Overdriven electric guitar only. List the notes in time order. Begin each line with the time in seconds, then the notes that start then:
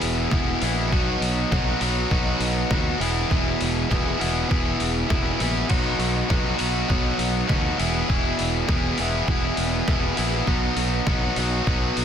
Already playing: E2 B2 E3 B3 E4 G#4
0.32 E2 B2 E3 B3 E4 G#4
0.62 E2 B2 E3 B3 E4 G#4
0.91 B2 F#3 B3 D#4 F#4
1.51 B2 F#3 B3 D#4 F#4
1.81 B2 F#3 B3 D#4 F#4
2.11 B2 F#3 B3 D#4 F#4
2.71 B2 F#3 B3 D#4 F#4
2.99 E2 B2 E3 B3 E4 G#4
3.30 E2 B2 E3 B3 E4 G#4
3.90 E2 B2 E3 B3 E4 G#4
4.19 E2 B2 E3 B3 E4 G#4
4.49 E2 B2 E3 B3 E4 G#4
5.08 E2 B2 E3 B3 E4 G#4
5.40 E2 B2 E3 B3 E4 G#4
5.68 B2 F#3 B3 D#4 F#4
6.29 B2 F#3 B3 D#4 F#4
6.57 B2 F#3 B3 D#4 F#4
6.88 B2 F#3 B3 D#4 F#4
7.47 B2 F#3 B3 D#4 F#4
7.78 E2 B2 E3 B3 E4 G#4
8.09 E2 B2 E3 B3 E4 G#4
8.68 E2 B2 E3 B3 E4 G#4
8.99 E2 B2 E3 B3 E4 G#4
9.28 E2 B2 E3 B3 E4 G#4
9.87 E2 B2 E3 B3 E4 G#4
10.16 E2 B2 E3 B3 E4 G#4
10.46 B2 F#3 B3 D#4 F#4
11.06 B2 F#3 B3 D#4 F#4
11.37 B2 F#3 B3 D#4 F#4
11.67 B2 F#3 B3 D#4 F#4